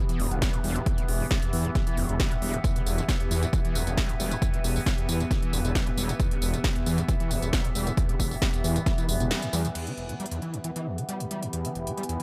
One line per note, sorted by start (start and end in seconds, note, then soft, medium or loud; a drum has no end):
0.00 9.74 E3 medium
0.00 9.74 B3 medium
0.00 9.75 G4 medium
0.00 12.23 E5 medium
0.09 0.21 E3 loud
0.09 closed hi-hat medium
0.20 0.27 E1 medium
0.20 0.33 E2 loud
0.20 open hi-hat loud
0.31 0.44 E1 medium
0.31 0.37 E3 medium
0.31 closed hi-hat medium
0.42 0.55 G3 loud
0.42 kick loud
0.42 snare loud
0.42 closed hi-hat medium
0.54 0.59 E2 medium
0.54 closed hi-hat medium
0.64 0.78 E1 medium
0.64 0.77 G3 loud
0.64 open hi-hat loud
0.76 0.82 E2 medium
0.76 closed hi-hat medium
0.86 0.99 E2 medium
0.86 kick loud
0.86 closed hi-hat medium
0.98 1.04 E3 loud
0.98 closed hi-hat medium
1.08 1.22 E1 medium
1.08 1.22 E1 loud
1.08 open hi-hat loud
1.20 1.26 E3 medium
1.20 open hi-hat medium
1.31 1.37 G3 loud
1.31 kick loud
1.31 snare loud
1.31 closed hi-hat medium
1.42 1.51 E2 loud
1.42 closed hi-hat medium
1.53 1.67 E2 loud
1.53 1.66 E3 medium
1.53 open hi-hat loud
1.65 1.70 E2 medium
1.65 closed hi-hat medium
1.75 1.82 E3 medium
1.75 kick loud
1.75 snare soft
1.75 closed hi-hat medium
1.87 1.99 E3 loud
1.87 closed hi-hat soft
1.97 2.05 E1 medium
1.97 2.11 E2 loud
1.97 open hi-hat loud
2.09 2.22 E1 medium
2.09 2.15 E3 medium
2.09 closed hi-hat soft
2.20 2.33 G3 loud
2.20 kick loud
2.20 snare loud
2.20 closed hi-hat medium
2.31 2.37 E2 medium
2.31 closed hi-hat medium
2.42 2.56 E1 medium
2.42 2.55 G3 loud
2.42 open hi-hat loud
2.53 2.59 E2 medium
2.53 closed hi-hat medium
2.64 2.77 E2 medium
2.64 kick loud
2.64 closed hi-hat medium
2.64 tambourine soft
2.76 2.82 E3 loud
2.76 closed hi-hat soft
2.86 3.00 E1 medium
2.86 open hi-hat loud
2.86 tambourine medium
2.98 3.04 E3 medium
2.98 closed hi-hat medium
2.98 tambourine soft
3.09 3.15 G3 loud
3.09 kick loud
3.09 snare loud
3.09 closed hi-hat medium
3.09 tambourine soft
3.20 3.29 E2 loud
3.20 closed hi-hat soft
3.31 3.45 E2 loud
3.31 3.44 E3 medium
3.31 open hi-hat loud
3.31 tambourine medium
3.42 3.48 E2 medium
3.42 closed hi-hat soft
3.42 tambourine soft
3.53 3.59 E3 medium
3.53 kick loud
3.53 closed hi-hat medium
3.53 tambourine soft
3.65 3.77 E3 loud
3.65 closed hi-hat soft
3.75 3.82 E1 medium
3.75 3.88 E2 loud
3.75 open hi-hat loud
3.75 tambourine medium
3.87 4.00 E1 medium
3.87 3.93 E3 medium
3.87 closed hi-hat soft
3.87 tambourine soft
3.97 4.11 G3 loud
3.97 kick loud
3.97 snare loud
3.97 closed hi-hat medium
3.97 tambourine soft
4.09 4.15 E2 medium
4.09 closed hi-hat medium
4.20 4.34 E1 medium
4.20 4.33 G3 loud
4.20 open hi-hat loud
4.20 tambourine medium
4.31 4.37 E2 medium
4.31 closed hi-hat medium
4.31 tambourine soft
4.42 4.55 E2 medium
4.42 kick loud
4.42 closed hi-hat medium
4.42 tambourine soft
4.54 4.59 E3 loud
4.54 closed hi-hat soft
4.64 4.78 E1 loud
4.64 4.77 E1 medium
4.64 open hi-hat loud
4.64 tambourine medium
4.76 4.82 E3 medium
4.76 open hi-hat medium
4.76 tambourine soft
4.86 4.93 G3 loud
4.86 kick loud
4.86 snare loud
4.86 closed hi-hat medium
4.86 tambourine soft
4.98 5.07 E2 loud
4.98 closed hi-hat soft
5.09 5.22 E2 loud
5.09 5.22 E3 medium
5.09 open hi-hat loud
5.09 tambourine medium
5.20 5.26 E2 medium
5.20 closed hi-hat medium
5.20 tambourine soft
5.31 5.37 E3 medium
5.31 kick loud
5.31 snare soft
5.31 closed hi-hat medium
5.31 tambourine soft
5.42 5.54 E3 loud
5.42 closed hi-hat medium
5.53 5.60 E1 medium
5.53 5.66 E2 loud
5.53 open hi-hat loud
5.53 tambourine medium
5.65 5.78 E1 medium
5.65 5.70 E3 medium
5.65 closed hi-hat soft
5.65 tambourine soft
5.75 5.88 G3 loud
5.75 kick loud
5.75 snare loud
5.75 closed hi-hat medium
5.75 tambourine soft
5.87 5.93 E2 medium
5.87 closed hi-hat medium
5.97 6.11 E1 medium
5.97 6.11 G3 loud
5.97 open hi-hat loud
5.97 tambourine medium
6.09 6.15 E2 medium
6.09 closed hi-hat medium
6.09 tambourine soft
6.20 6.33 E2 medium
6.20 kick loud
6.20 closed hi-hat medium
6.20 tambourine soft
6.31 6.37 E3 loud
6.31 closed hi-hat medium
6.42 6.56 E1 loud
6.42 6.55 E1 medium
6.42 open hi-hat loud
6.42 tambourine medium
6.53 6.59 E3 medium
6.53 closed hi-hat soft
6.53 tambourine soft
6.64 6.71 G3 loud
6.64 kick loud
6.64 snare loud
6.64 closed hi-hat medium
6.64 tambourine soft
6.76 6.84 E2 loud
6.76 closed hi-hat medium
6.86 7.00 E2 loud
6.86 6.99 E3 medium
6.86 open hi-hat loud
6.86 tambourine medium
6.98 7.04 E2 medium
6.98 closed hi-hat medium
6.98 tambourine soft
7.08 7.15 E3 medium
7.08 kick loud
7.08 closed hi-hat medium
7.08 tambourine soft
7.20 7.32 E3 loud
7.20 closed hi-hat medium
7.31 7.38 E1 medium
7.31 7.44 E2 loud
7.31 open hi-hat loud
7.31 tambourine medium
7.42 7.55 E1 medium
7.42 7.48 E3 medium
7.42 closed hi-hat medium
7.42 tambourine soft
7.53 7.66 G3 loud
7.53 kick loud
7.53 snare loud
7.53 closed hi-hat medium
7.53 tambourine soft
7.65 7.70 E2 medium
7.65 closed hi-hat medium
7.75 7.89 E1 medium
7.75 7.88 G3 loud
7.75 open hi-hat loud
7.75 tambourine medium
7.87 7.93 E2 medium
7.87 closed hi-hat medium
7.87 tambourine soft
7.97 8.11 E2 medium
7.97 kick loud
7.97 closed hi-hat medium
7.97 tambourine soft
8.09 8.15 E3 loud
8.09 closed hi-hat medium
8.20 8.34 E1 loud
8.20 8.33 E1 medium
8.20 kick medium
8.20 open hi-hat loud
8.20 tambourine medium
8.31 8.37 E3 medium
8.31 open hi-hat medium
8.31 tambourine soft
8.42 8.48 G3 loud
8.42 kick loud
8.42 snare loud
8.42 closed hi-hat medium
8.42 tambourine soft
8.54 8.62 E2 loud
8.54 closed hi-hat medium
8.54 tambourine soft
8.64 8.78 E2 loud
8.64 8.77 E3 medium
8.64 open hi-hat loud
8.64 tambourine medium
8.76 8.82 E2 medium
8.76 closed hi-hat medium
8.76 tambourine soft
8.86 8.93 E3 medium
8.86 kick loud
8.86 snare soft
8.86 closed hi-hat medium
8.86 tambourine soft
8.98 9.10 E3 loud
8.98 closed hi-hat medium
8.98 tambourine soft
9.08 9.16 E1 medium
9.08 9.22 E2 loud
9.08 open hi-hat loud
9.08 tambourine medium
9.20 9.33 E1 medium
9.20 9.26 E3 medium
9.20 closed hi-hat medium
9.20 tambourine soft
9.31 9.44 G3 loud
9.31 snare loud
9.31 closed hi-hat medium
9.31 tambourine soft
9.42 9.48 E2 medium
9.42 closed hi-hat medium
9.42 tambourine soft
9.53 9.67 E2 loud
9.53 9.66 G3 loud
9.53 open hi-hat loud
9.53 tambourine medium
9.65 9.70 E2 medium
9.65 closed hi-hat medium
9.65 tambourine soft
9.75 9.88 E2 medium
9.75 12.23 E3 medium
9.75 12.23 B3 medium
9.75 closed hi-hat medium
9.75 crash medium
9.87 9.93 E3 loud
9.87 closed hi-hat medium
9.93 12.23 G4 medium
9.97 10.11 E1 medium
9.97 closed hi-hat soft
10.09 10.15 E3 medium
10.09 closed hi-hat medium
10.20 10.26 G3 loud
10.20 closed hi-hat soft
10.26 closed hi-hat medium
10.31 10.40 E2 loud
10.31 closed hi-hat medium
10.42 10.55 E3 medium
10.42 closed hi-hat soft
10.54 10.59 E2 medium
10.54 closed hi-hat medium
10.64 10.71 E3 medium
10.64 closed hi-hat medium
10.76 10.88 E3 loud
10.76 closed hi-hat medium
10.87 11.00 E2 loud
10.98 11.04 E3 medium
10.98 closed hi-hat soft
11.09 11.22 G3 loud
11.09 closed hi-hat medium
11.20 11.26 E2 medium
11.20 closed hi-hat medium
11.31 11.44 G3 loud
11.31 closed hi-hat medium
11.42 11.48 E2 medium
11.42 closed hi-hat medium
11.53 11.66 E2 medium
11.53 closed hi-hat medium
11.65 11.70 E3 loud
11.65 closed hi-hat medium
11.75 11.88 E1 medium
11.75 closed hi-hat soft
11.87 11.93 E3 medium
11.87 closed hi-hat medium
11.97 12.04 G3 medium
11.97 closed hi-hat medium
12.03 closed hi-hat medium
12.09 12.18 E2 loud
12.09 closed hi-hat medium
12.20 12.23 E3 medium